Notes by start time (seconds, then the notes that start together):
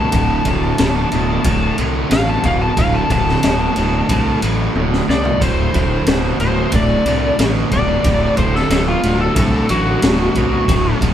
Already playing: A5
0.12 D1 D2 A2, kick, ride
0.45 D1 D2 A2, kick, ride
0.78 D1 D2 B2, snare, ride
1.12 D1 D2 B2, ride
1.44 D1 D2 A2, kick, ride
1.78 C2 D2 A2, ride
2.09 A1 D2 B2 F5, snare, ride
2.29 A5
2.43 D1 D2 B2 F5, kick, ride
2.61 A5
2.77 D1 D2 A2 F5, kick, ride
2.94 A5
3.10 D1 D2 A2 A5, kick, ride
3.28 snare
3.43 D1 D2 B2, snare, ride
3.76 D1 D2 B2, ride
4.09 C2 D2 A2, kick, ride
4.42 A1 D2 A2, ride
4.74 D1 D2 B2, high tom
4.93 snare
5.08 C2 D2 B2 D5, snare
5.25 floor tom
5.39 D1 D2 A2 C5, kick, ride
5.72 D1 D2 A2, kick, ride
6.06 D1 D2 B2, snare, ride
6.39 D1 D2 B2 C5, ride
6.72 D1 D2 A2 D5, kick, ride
7.06 C2 D2 A2, ride
7.39 A1 D2 B2, snare, ride
7.71 D1 D2 B2 D5, kick, ride
8.04 D1 D2 A2, kick, ride
8.37 D1 D2 A2 C5, kick, ride
8.55 A4, snare
8.70 D1 D2 B2, snare, ride
8.88 F4
9.03 D1 D2 B2, ride
9.21 A4
9.35 C2 D2 A2, kick, ride
9.69 A1 D2 A2 F#4, ride
10.02 D1 D2 B2, snare, ride
10.35 C2 D2 B2, kick, ride
10.68 D1 D2 A2, kick, ride
11.01 D1 D2 A2, kick, ride